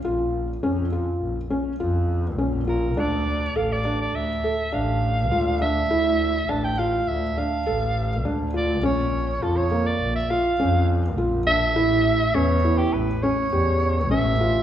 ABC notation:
X:1
M:5/4
L:1/16
Q:1/4=102
K:Dm
V:1 name="Soprano saxophone"
z16 z2 B2 | d4 f d2 d e4 f6 e2- | e4 a g f2 e2 f6 z2 d2 | _d4 A d2 =d2 e f4 z4 e2- |
e4 ^c3 G =B2 c6 e4 |]
V:2 name="Felt piano"
F4 _D2 F4 D2 F4 D2 F2 | D4 A2 D4 A2 D4 F2 D2 | E4 D2 F4 D2 A4 D2 F2 | _D4 F2 B,4 F2 D4 F2 =D2 |
E4 ^C2 E4 C2 G4 C2 F2 |]
V:3 name="Double bass" clef=bass
B,,,4 F,,4 B,,,2 z2 F,,4 B,,,4 | D,,4 A,,,4 D,,2 z2 A,,,4 D,,4 | D,,4 A,,,4 D,,2 z2 A,,,4 D,,4 | B,,,4 F,,4 B,,,2 z2 F,,4 B,,,4 |
A,,,4 E,,4 A,,,2 z2 E,,4 A,,,4 |]